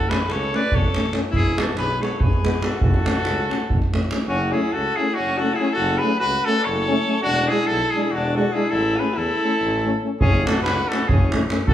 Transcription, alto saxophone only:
0, 0, Header, 1, 2, 480
1, 0, Start_track
1, 0, Key_signature, 3, "minor"
1, 0, Tempo, 423131
1, 1494, Time_signature, 7, 3, 24, 8
1, 13316, End_track
2, 0, Start_track
2, 0, Title_t, "Alto saxophone"
2, 0, Program_c, 0, 65
2, 0, Note_on_c, 0, 66, 82
2, 105, Note_on_c, 0, 68, 73
2, 122, Note_off_c, 0, 66, 0
2, 314, Note_on_c, 0, 69, 90
2, 331, Note_off_c, 0, 68, 0
2, 624, Note_on_c, 0, 71, 82
2, 641, Note_off_c, 0, 69, 0
2, 852, Note_on_c, 0, 69, 96
2, 869, Note_off_c, 0, 71, 0
2, 1300, Note_off_c, 0, 69, 0
2, 1482, Note_on_c, 0, 64, 96
2, 1796, Note_on_c, 0, 66, 76
2, 1813, Note_off_c, 0, 64, 0
2, 2002, Note_off_c, 0, 66, 0
2, 2008, Note_on_c, 0, 68, 70
2, 2294, Note_on_c, 0, 69, 67
2, 2311, Note_off_c, 0, 68, 0
2, 2532, Note_on_c, 0, 68, 88
2, 2549, Note_off_c, 0, 69, 0
2, 3007, Note_on_c, 0, 66, 74
2, 3024, Note_off_c, 0, 68, 0
2, 3196, Note_off_c, 0, 66, 0
2, 3213, Note_on_c, 0, 66, 93
2, 4418, Note_off_c, 0, 66, 0
2, 4849, Note_on_c, 0, 61, 95
2, 5128, Note_on_c, 0, 64, 79
2, 5145, Note_off_c, 0, 61, 0
2, 5368, Note_on_c, 0, 66, 91
2, 5385, Note_off_c, 0, 64, 0
2, 5640, Note_on_c, 0, 64, 75
2, 5657, Note_off_c, 0, 66, 0
2, 5856, Note_on_c, 0, 61, 105
2, 5873, Note_off_c, 0, 64, 0
2, 6096, Note_on_c, 0, 66, 93
2, 6113, Note_off_c, 0, 61, 0
2, 6286, Note_on_c, 0, 64, 80
2, 6303, Note_off_c, 0, 66, 0
2, 6512, Note_off_c, 0, 64, 0
2, 6519, Note_on_c, 0, 66, 105
2, 6789, Note_on_c, 0, 68, 88
2, 6806, Note_off_c, 0, 66, 0
2, 7017, Note_off_c, 0, 68, 0
2, 7024, Note_on_c, 0, 66, 91
2, 7280, Note_off_c, 0, 66, 0
2, 7280, Note_on_c, 0, 66, 87
2, 7465, Note_on_c, 0, 71, 68
2, 7482, Note_off_c, 0, 66, 0
2, 7488, Note_on_c, 0, 69, 118
2, 7505, Note_off_c, 0, 71, 0
2, 8190, Note_off_c, 0, 69, 0
2, 8199, Note_on_c, 0, 62, 97
2, 8497, Note_on_c, 0, 64, 85
2, 8514, Note_off_c, 0, 62, 0
2, 8731, Note_off_c, 0, 64, 0
2, 8731, Note_on_c, 0, 64, 83
2, 9031, Note_off_c, 0, 64, 0
2, 9031, Note_on_c, 0, 64, 83
2, 9249, Note_on_c, 0, 62, 93
2, 9266, Note_off_c, 0, 64, 0
2, 9479, Note_off_c, 0, 62, 0
2, 9486, Note_on_c, 0, 66, 89
2, 9693, Note_on_c, 0, 64, 82
2, 9710, Note_off_c, 0, 66, 0
2, 9861, Note_off_c, 0, 64, 0
2, 9861, Note_on_c, 0, 64, 96
2, 10169, Note_on_c, 0, 68, 85
2, 10186, Note_off_c, 0, 64, 0
2, 10370, Note_on_c, 0, 64, 84
2, 10387, Note_off_c, 0, 68, 0
2, 11356, Note_off_c, 0, 64, 0
2, 11570, Note_on_c, 0, 61, 97
2, 11844, Note_off_c, 0, 61, 0
2, 11859, Note_on_c, 0, 66, 75
2, 12066, Note_off_c, 0, 66, 0
2, 12075, Note_on_c, 0, 66, 88
2, 12350, Note_off_c, 0, 66, 0
2, 12350, Note_on_c, 0, 66, 72
2, 12568, Note_on_c, 0, 61, 78
2, 12585, Note_off_c, 0, 66, 0
2, 12833, Note_off_c, 0, 61, 0
2, 13252, Note_on_c, 0, 66, 92
2, 13316, Note_off_c, 0, 66, 0
2, 13316, End_track
0, 0, End_of_file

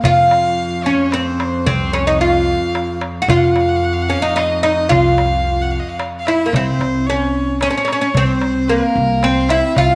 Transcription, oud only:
0, 0, Header, 1, 2, 480
1, 0, Start_track
1, 0, Tempo, 541028
1, 28, Time_signature, 3, 2, 24, 8
1, 8828, End_track
2, 0, Start_track
2, 0, Title_t, "Oud"
2, 0, Program_c, 0, 24
2, 43, Note_on_c, 0, 65, 102
2, 759, Note_off_c, 0, 65, 0
2, 763, Note_on_c, 0, 61, 82
2, 1003, Note_off_c, 0, 61, 0
2, 1007, Note_on_c, 0, 60, 80
2, 1466, Note_off_c, 0, 60, 0
2, 1477, Note_on_c, 0, 60, 88
2, 1712, Note_off_c, 0, 60, 0
2, 1715, Note_on_c, 0, 61, 76
2, 1834, Note_off_c, 0, 61, 0
2, 1838, Note_on_c, 0, 63, 80
2, 1956, Note_off_c, 0, 63, 0
2, 1960, Note_on_c, 0, 65, 72
2, 2640, Note_off_c, 0, 65, 0
2, 2855, Note_on_c, 0, 66, 74
2, 2914, Note_off_c, 0, 66, 0
2, 2924, Note_on_c, 0, 65, 98
2, 3630, Note_off_c, 0, 65, 0
2, 3634, Note_on_c, 0, 61, 73
2, 3741, Note_off_c, 0, 61, 0
2, 3744, Note_on_c, 0, 63, 78
2, 3856, Note_off_c, 0, 63, 0
2, 3866, Note_on_c, 0, 63, 78
2, 4097, Note_off_c, 0, 63, 0
2, 4108, Note_on_c, 0, 63, 82
2, 4337, Note_off_c, 0, 63, 0
2, 4340, Note_on_c, 0, 65, 90
2, 5269, Note_off_c, 0, 65, 0
2, 5572, Note_on_c, 0, 64, 83
2, 5730, Note_on_c, 0, 58, 56
2, 5743, Note_off_c, 0, 64, 0
2, 5790, Note_off_c, 0, 58, 0
2, 5818, Note_on_c, 0, 60, 83
2, 6250, Note_off_c, 0, 60, 0
2, 6295, Note_on_c, 0, 61, 74
2, 6754, Note_off_c, 0, 61, 0
2, 6764, Note_on_c, 0, 61, 81
2, 6824, Note_off_c, 0, 61, 0
2, 6836, Note_on_c, 0, 61, 57
2, 6887, Note_off_c, 0, 61, 0
2, 6898, Note_on_c, 0, 61, 61
2, 6951, Note_off_c, 0, 61, 0
2, 6962, Note_on_c, 0, 61, 54
2, 7020, Note_off_c, 0, 61, 0
2, 7031, Note_on_c, 0, 61, 67
2, 7090, Note_off_c, 0, 61, 0
2, 7110, Note_on_c, 0, 61, 65
2, 7163, Note_off_c, 0, 61, 0
2, 7248, Note_on_c, 0, 60, 93
2, 7710, Note_off_c, 0, 60, 0
2, 7714, Note_on_c, 0, 58, 74
2, 8196, Note_on_c, 0, 60, 86
2, 8204, Note_off_c, 0, 58, 0
2, 8427, Note_off_c, 0, 60, 0
2, 8430, Note_on_c, 0, 64, 91
2, 8672, Note_off_c, 0, 64, 0
2, 8676, Note_on_c, 0, 65, 100
2, 8828, Note_off_c, 0, 65, 0
2, 8828, End_track
0, 0, End_of_file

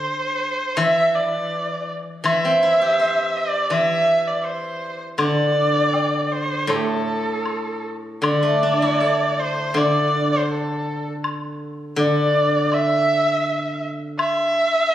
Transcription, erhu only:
0, 0, Header, 1, 2, 480
1, 0, Start_track
1, 0, Tempo, 736196
1, 1472, Time_signature, 4, 2, 24, 8
1, 3386, Tempo, 760456
1, 6746, Tempo, 733496
1, 9646, End_track
2, 0, Start_track
2, 0, Title_t, "Erhu"
2, 0, Program_c, 0, 110
2, 0, Note_on_c, 0, 72, 78
2, 502, Note_on_c, 0, 76, 99
2, 512, Note_off_c, 0, 72, 0
2, 751, Note_on_c, 0, 74, 79
2, 760, Note_off_c, 0, 76, 0
2, 1231, Note_off_c, 0, 74, 0
2, 1475, Note_on_c, 0, 76, 104
2, 2196, Note_on_c, 0, 74, 97
2, 2206, Note_off_c, 0, 76, 0
2, 2431, Note_on_c, 0, 76, 103
2, 2441, Note_off_c, 0, 74, 0
2, 2789, Note_on_c, 0, 74, 86
2, 2799, Note_off_c, 0, 76, 0
2, 2901, Note_on_c, 0, 72, 80
2, 2911, Note_off_c, 0, 74, 0
2, 3264, Note_off_c, 0, 72, 0
2, 3389, Note_on_c, 0, 74, 93
2, 4050, Note_off_c, 0, 74, 0
2, 4050, Note_on_c, 0, 74, 60
2, 4096, Note_on_c, 0, 72, 75
2, 4105, Note_off_c, 0, 74, 0
2, 4335, Note_on_c, 0, 69, 64
2, 4344, Note_off_c, 0, 72, 0
2, 4370, Note_on_c, 0, 67, 54
2, 4380, Note_off_c, 0, 69, 0
2, 4426, Note_on_c, 0, 69, 64
2, 4435, Note_off_c, 0, 67, 0
2, 5063, Note_off_c, 0, 69, 0
2, 5308, Note_on_c, 0, 74, 89
2, 6040, Note_on_c, 0, 72, 82
2, 6049, Note_off_c, 0, 74, 0
2, 6276, Note_on_c, 0, 74, 90
2, 6286, Note_off_c, 0, 72, 0
2, 6626, Note_on_c, 0, 72, 79
2, 6636, Note_off_c, 0, 74, 0
2, 6697, Note_off_c, 0, 72, 0
2, 6697, Note_on_c, 0, 72, 48
2, 6743, Note_on_c, 0, 69, 61
2, 6753, Note_off_c, 0, 72, 0
2, 7109, Note_off_c, 0, 69, 0
2, 7706, Note_on_c, 0, 74, 88
2, 8195, Note_on_c, 0, 76, 105
2, 8205, Note_off_c, 0, 74, 0
2, 8911, Note_off_c, 0, 76, 0
2, 9149, Note_on_c, 0, 76, 103
2, 9646, Note_off_c, 0, 76, 0
2, 9646, End_track
0, 0, End_of_file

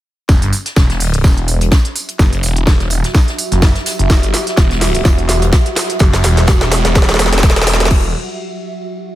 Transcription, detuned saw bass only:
0, 0, Header, 1, 2, 480
1, 0, Start_track
1, 0, Key_signature, 1, "minor"
1, 0, Tempo, 476190
1, 291, Time_signature, 4, 2, 24, 8
1, 9224, End_track
2, 0, Start_track
2, 0, Title_t, "Detuned saw bass"
2, 0, Program_c, 0, 39
2, 291, Note_on_c, 0, 28, 90
2, 404, Note_off_c, 0, 28, 0
2, 424, Note_on_c, 0, 31, 90
2, 514, Note_off_c, 0, 31, 0
2, 770, Note_on_c, 0, 28, 90
2, 1234, Note_off_c, 0, 28, 0
2, 1251, Note_on_c, 0, 28, 95
2, 1714, Note_off_c, 0, 28, 0
2, 2211, Note_on_c, 0, 30, 98
2, 2434, Note_off_c, 0, 30, 0
2, 2451, Note_on_c, 0, 28, 96
2, 2804, Note_off_c, 0, 28, 0
2, 2825, Note_on_c, 0, 28, 101
2, 3044, Note_off_c, 0, 28, 0
2, 3545, Note_on_c, 0, 30, 94
2, 3764, Note_off_c, 0, 30, 0
2, 4025, Note_on_c, 0, 30, 95
2, 4114, Note_off_c, 0, 30, 0
2, 4131, Note_on_c, 0, 28, 98
2, 4243, Note_off_c, 0, 28, 0
2, 4264, Note_on_c, 0, 31, 95
2, 4354, Note_off_c, 0, 31, 0
2, 4611, Note_on_c, 0, 28, 93
2, 5074, Note_off_c, 0, 28, 0
2, 5091, Note_on_c, 0, 28, 100
2, 5554, Note_off_c, 0, 28, 0
2, 6051, Note_on_c, 0, 30, 97
2, 6274, Note_off_c, 0, 30, 0
2, 6291, Note_on_c, 0, 28, 98
2, 6643, Note_off_c, 0, 28, 0
2, 6665, Note_on_c, 0, 28, 107
2, 6884, Note_off_c, 0, 28, 0
2, 6905, Note_on_c, 0, 28, 98
2, 7124, Note_off_c, 0, 28, 0
2, 7145, Note_on_c, 0, 28, 96
2, 7364, Note_off_c, 0, 28, 0
2, 7384, Note_on_c, 0, 28, 97
2, 7714, Note_off_c, 0, 28, 0
2, 7731, Note_on_c, 0, 28, 100
2, 7954, Note_off_c, 0, 28, 0
2, 7971, Note_on_c, 0, 28, 100
2, 8194, Note_off_c, 0, 28, 0
2, 9224, End_track
0, 0, End_of_file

